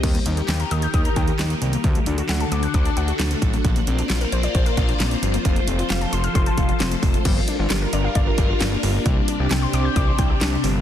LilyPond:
<<
  \new Staff \with { instrumentName = "String machine" } { \time 4/4 \key g \minor \tempo 4 = 133 << { <ees g' bes'>1 | <d fis' a'>1 | <bes c'' d''>1 | <f a'>1 |
<g f' bes'>1 | <c g'>2.~ <c g'>8 <g f' bes'>8 | } \\ { ees'1 | d'1 | f'1~ | f'1 |
d'1 | c'2.~ c'8 r8 | } >> }
  \new Staff \with { instrumentName = "Synth pluck" } { \time 4/4 \key g \minor g16 bes16 ees'16 g'16 g''16 bes''16 ees'''16 g'''16 ees'''16 bes''16 g''16 g'16 ees'16 bes16 g16 bes16 | fis16 a16 d'16 fis'16 fis''16 a''16 d'''16 fis'''16 d'''16 a''16 fis''16 fis'16 d'16 a16 fis16 a16 | f16 bes16 c'16 d'16 f'16 bes'16 c''16 d''16 c''16 bes'16 f'16 d'16 c'16 bes16 f16 bes16 | f16 a16 c'16 f'16 f''16 a''16 c'''16 f'''16 c'''16 a''16 f''16 f'16 c'16 a16 f16 a16 |
g16 r16 d'16 f'16 g'16 bes'16 d''16 f''16 d''16 bes'16 g'16 f'16 d'16 bes16 g16 bes16 | g16 r16 d'16 g'16 g''16 c'''16 d'''16 g'''16 d'''16 c'''16 g''16 g'16 d'16 c'16 g16 bes16 | }
  \new Staff \with { instrumentName = "Analog synth bass" } { \clef bass \time 4/4 \key g \minor ees,8 ees,8 ees,8 ees,8 ees,8 ees,8 ees,8 c,8 | d,8 d,8 d,8 d,8 d,8 d,8 d,8 a,,8 | bes,,8 bes,,8 bes,,8 bes,,8 bes,,8 bes,,8 bes,,8 g,,8 | f,,8 f,,8 f,,8 f,,8 f,,8 f,,8 f,,8 f,,8 |
g,,8 r16 g,,16 g,,8 g,,8 g,,8 g,,8 g,,8 g,,8 | c,8 r16 c,16 c,8 c,8 c,8 c,8 c,8 g,,8 | }
  \new DrumStaff \with { instrumentName = "Drums" } \drummode { \time 4/4 <cymc hh bd>16 hh16 hh16 hh16 <hc hh sn>16 hh16 hh16 hh16 <hh bd>16 hh16 <hh bd>16 hh16 <hc hh sn>16 hh16 hh16 hh16 | <hh bd>16 hh16 hh16 hh16 <hc hh sn>16 hh16 hh16 hh16 <hh bd>16 hh16 hh16 hh16 <hc hh sn>16 hh16 <hh bd>16 hh16 | <hh bd>16 hh16 hh16 hh16 <hc hh sn>16 hh16 hh16 hh16 <hh bd>16 hh16 <hh bd>16 hh16 <hc hh sn>16 hh16 hh16 hh16 | <hh bd>16 hh16 hh16 hh16 <hc hh sn>16 hh16 hh16 hh16 <hh bd>16 hh16 <hh bd>16 hh16 <hc hh sn>16 hh16 <hho bd>16 hh16 |
<cymc hh bd>8 hh8 <hc hh sn>8 hh8 <hh bd>8 <hh bd>8 <hc hh sn>8 hho8 | <hh bd>8 hh8 <hc hh sn>8 hh8 <hh bd>8 <hh bd>8 <hc hh sn>8 hho8 | }
>>